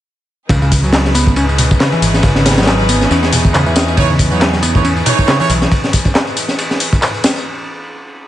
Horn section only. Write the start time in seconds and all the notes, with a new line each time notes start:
3.98 D#4 E4 B4 C#5
4.31 D#4 E4 B4 C#5
4.75 D#4 E4 B4 C#5
5.06 D#4 E4 B4 C#5
5.40 D#4 E4 B4 C#5